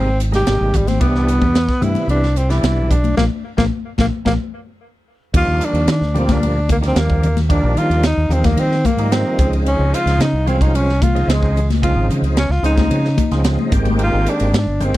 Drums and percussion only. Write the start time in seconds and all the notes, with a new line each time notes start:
0.20 hi-hat pedal, ride
0.33 snare, ride
0.47 snare, ride
0.74 kick, hi-hat pedal, ride, low conga
0.87 snare, ride, high conga
1.01 kick, ride
1.15 snare
1.28 hi-hat pedal, ride
1.42 kick, high conga
1.55 snare, ride
1.69 kick, snare
1.82 hi-hat pedal, ride, high conga, low conga
1.95 ride, high conga
2.09 ride
2.23 snare
2.36 hi-hat pedal, ride
2.50 snare, ride
2.63 snare, ride
2.91 kick, hi-hat pedal, ride, low conga
3.04 ride, high conga
3.17 kick, snare, high conga
3.58 kick, snare, high conga
3.98 kick, snare, high conga
4.26 kick, snare, high conga
5.34 kick, crash
5.61 hi-hat pedal, ride
5.74 ride
5.88 snare, ride
6.03 snare
6.15 hi-hat pedal, ride, low conga
6.29 kick, snare, ride, high conga
6.43 ride
6.69 kick, hi-hat pedal, ride, high conga, low conga
6.83 snare, ride
6.96 snare, ride
7.10 kick
7.23 hi-hat pedal, ride, low conga
7.37 snare, ride, high conga
7.50 kick, ride
7.77 hi-hat pedal, ride
7.91 ride
8.03 snare, ride
8.31 hi-hat pedal, ride, low conga
8.44 kick, snare, ride, high conga
8.57 ride
8.72 snare
8.85 kick, hi-hat pedal, ride, high conga, low conga
8.98 ride
9.12 snare, ride
9.39 kick, hi-hat pedal, ride, low conga
9.53 ride
9.66 ride
9.94 hi-hat pedal, ride
10.07 snare, ride
10.20 snare, ride
10.47 hi-hat pedal, ride, low conga
10.61 kick, ride
10.75 ride
10.89 snare
11.02 kick, hi-hat pedal, ride, high conga, low conga
11.16 ride
11.29 snare, ride
11.43 kick
11.56 hi-hat pedal, ride, low conga
11.70 snare, ride, high conga
11.83 kick, ride
12.10 hi-hat pedal, ride, low conga
12.24 ride
12.37 snare, ride
12.51 snare
12.64 hi-hat pedal, ride
12.77 kick, snare, ride, high conga
12.91 ride
13.05 snare
13.18 kick, hi-hat pedal, ride, high conga, low conga
13.31 snare, ride
13.44 snare, ride
13.59 high conga
13.72 kick, hi-hat pedal, ride, low conga
13.85 ride, high conga
13.99 ride
14.26 hi-hat pedal, ride
14.40 ride
14.54 snare, ride
14.80 hi-hat pedal, ride, low conga